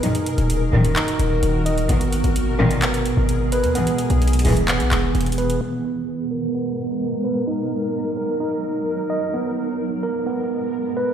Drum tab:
HH |x-x-x-x-x-----x-x-x-x---x---x-x-|x-x-x-x-x-----x-x-x-x---x---x-x-|x-x-x-x-xxxxo-x-x-x-x---xxxxx-x-|--------------------------------|
CP |----------------x---------------|----------------x---------------|----------------x---x-----------|--------------------------------|

HH |--------------------------------|--------------------------------|
CP |--------------------------------|--------------------------------|